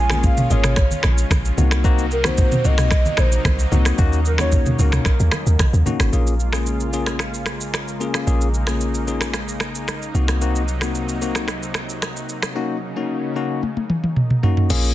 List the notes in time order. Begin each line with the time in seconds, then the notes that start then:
Already playing: A#1 C#3 G#3 C#4 F4
0.00 G#5
0.10 A#3 C#4 F4 G#4 G#5, finger snap, cross-stick, high conga, shaker
0.23 F5, kick, low conga, shaker
0.37 mid tom, high conga, shaker
0.50 G#1 A#3 C#4 F4 G#4 C#5, low conga, shaker
0.64 finger snap, cross-stick, mid tom, shaker
0.76 finger snap, kick, cross-stick, shaker
0.91 high conga, shaker
1.03 A#1, finger snap, cross-stick, high conga, shaker
1.18 shaker
1.31 A#1, finger snap, kick, cross-stick, high conga, shaker
1.45 shaker
1.57 C2 C3 F#3 A#3 C4 D#4 F#4, high conga, low conga, shaker
1.71 finger snap, cross-stick, shaker
1.84 A#3 C4 D#4 F#4, kick, shaker
1.98 shaker
2.11 A#4, shaker
2.24 A#3 C4 D#4 F#4 C5, finger snap, cross-stick, high conga, shaker
2.38 kick, low conga, shaker
2.52 mid tom, high conga, shaker
2.64 C2 A#3 C4 D#4 F#4 D#5, low conga, shaker
2.78 finger snap, cross-stick, mid tom, shaker
2.91 finger snap, kick, cross-stick, shaker
3.05 high conga, shaker
3.17 A#1 C5, finger snap, cross-stick, high conga, shaker
3.32 shaker
3.45 C2, finger snap, kick, cross-stick, high conga, shaker
3.59 shaker
3.71 C2 A#3 C4 D#4 F#4, high conga, low conga, shaker
3.85 finger snap, cross-stick, shaker
3.98 D#2 C#3 A#3 C#4 D#4 F#4, kick, shaker
4.13 shaker
4.25 A#4, shaker
4.38 A#3 C#4 D#4 F#4 C#5, finger snap, cross-stick, high conga, shaker
4.52 kick, low conga, shaker
4.66 mid tom, high conga, shaker
4.79 C#2 A#3 C#4 D#4 F#4 A#4, low conga, shaker
4.92 finger snap, cross-stick, mid tom, shaker
5.05 finger snap, kick, cross-stick, shaker
5.20 D#2, high conga, shaker
5.32 finger snap, cross-stick, high conga, shaker
5.46 D#2, shaker
5.59 finger snap, kick, cross-stick, high conga, shaker
5.73 D#2, shaker
5.86 A#3 C#4 D#4 F#4, high conga, low conga, shaker
6.00 G#1, finger snap, cross-stick, shaker
6.13 A#1 C#3 G#3 A#3 C#4 F4 G#4, shaker
6.27 shaker
6.40 shaker
6.53 A#3 C#4 F4 G#4, finger snap, cross-stick, shaker
6.66 shaker
6.80 shaker
6.93 A#3 C#4 F4 G#4, shaker
7.06 finger snap, cross-stick, shaker
7.19 finger snap, cross-stick, shaker
7.34 shaker
7.46 finger snap, cross-stick, shaker
7.61 shaker
7.74 finger snap, cross-stick, shaker
7.88 shaker
8.00 A#3 C#4 F4 G#4, shaker
8.14 finger snap, cross-stick, shaker
8.27 A#1 A#3 C#4 D#4 F4 G#4, shaker
8.41 shaker
8.54 shaker
8.67 A#3 C#4 F4 G#4, finger snap, cross-stick, shaker
8.81 shaker
8.95 shaker
9.07 A#3 C#4 F4 G#4, shaker
9.21 finger snap, cross-stick, shaker
9.34 finger snap, cross-stick, shaker
9.48 shaker
9.60 finger snap, cross-stick, shaker
9.75 shaker
9.88 finger snap, cross-stick, shaker
10.02 shaker
10.14 C2 C3 F#3 A#3 C4 D#4 F#4, shaker
10.28 finger snap, cross-stick, shaker
10.41 A#3 C4 D#4 F#4, shaker
10.56 shaker
10.68 shaker
10.81 A#3 C4 D#4 F#4, finger snap, cross-stick, shaker
10.95 shaker
11.09 shaker
11.22 A#3 C4 D#4 F#4, shaker
11.35 finger snap, cross-stick, shaker
11.48 finger snap, cross-stick, shaker
11.63 shaker
11.74 finger snap, cross-stick, shaker
11.89 shaker
12.02 finger snap, cross-stick, shaker
12.16 shaker
12.29 shaker
12.43 finger snap, cross-stick, shaker
12.55 C#3 A#3 C#4 D#4 F#4
12.96 A#3 C#4 D#4 F#4
13.36 A#3 C#4 D#4 F#4
13.63 high tom
13.77 high tom
13.90 mid tom
14.04 mid tom
14.16 mid tom
14.30 mid tom
14.43 A#3 C#4 D#4 F#4, floor tom
14.57 floor tom
14.70 A#1 A#3 C#4 F4 G#4, crash, shaker
14.84 shaker